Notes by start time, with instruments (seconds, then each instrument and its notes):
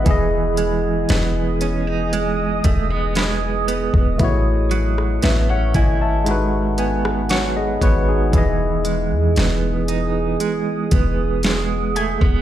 Already playing: clean electric guitar G#2 F#3 B3, ambient pad G#4, synth pluck D#6
0.04 808-style bass E1, tine electric piano E3 E4, clean electric guitar E3, ambient pad D#5 D#6, kick, closed hi-hat
0.08 tine electric piano G#4 D#5
0.57 clean electric guitar G#3, closed hi-hat
1.09 808-style bass E1, clean electric guitar B3, snare, closed hi-hat
1.61 clean electric guitar C#4, closed hi-hat
1.87 clean electric guitar D#4
2.13 clean electric guitar G#3, closed hi-hat
2.64 808-style bass E1, clean electric guitar A3, kick, closed hi-hat
2.90 clean electric guitar B3
3.15 clean electric guitar G#3, synth pluck B5, snare, closed hi-hat
3.68 clean electric guitar B3, closed hi-hat
3.94 808-style bass D#1, kick
4.18 808-style bass A1, tine electric piano A3 E4, ambient pad A4 F#5 C#6, kick, closed hi-hat
4.23 tine electric piano F#4 C#5
4.71 clean electric guitar F#3, closed hi-hat
4.98 cross-stick
5.22 808-style bass A1, clean electric guitar B3, tine electric piano B4 E5, snare, closed hi-hat
5.49 clean electric guitar C#4, tine electric piano C#5 F#5
5.74 808-style bass G#1, clean electric guitar E4, tine electric piano D#5 G#5, kick, closed hi-hat
6.01 tine electric piano E5 A5
6.24 clean electric guitar G#2, tine electric piano G#3 D#4, ambient pad G#4 B5, closed hi-hat
6.28 tine electric piano F#4 B4
6.78 clean electric guitar B3, tine electric piano G#5, closed hi-hat
7.05 cross-stick
7.29 clean electric guitar F#3, tine electric piano C#5 F#5, synth pluck C#6, snare, closed hi-hat
7.57 tine electric piano G#4 D#5
7.81 808-style bass G#1, clean electric guitar B3, tine electric piano F#4 B4 C#5, kick, closed hi-hat
8.09 tine electric piano D#4 G#4
8.31 808-style bass E1, tine electric piano E3 E4, clean electric guitar E3, ambient pad D#5 D#6, kick, closed hi-hat
8.35 tine electric piano G#4 D#5
8.85 clean electric guitar G#3, closed hi-hat
9.11 808-style bass E2
9.36 808-style bass E1, clean electric guitar B3, snare, closed hi-hat
9.88 clean electric guitar D#4, closed hi-hat
10.40 clean electric guitar G#3, ambient pad F#5, closed hi-hat
10.91 808-style bass E1, clean electric guitar B3, kick, closed hi-hat
11.43 clean electric guitar G#3, snare, closed hi-hat
11.96 clean electric guitar A3, synth pluck G#5, closed hi-hat
12.21 808-style bass E1, clean electric guitar B3, kick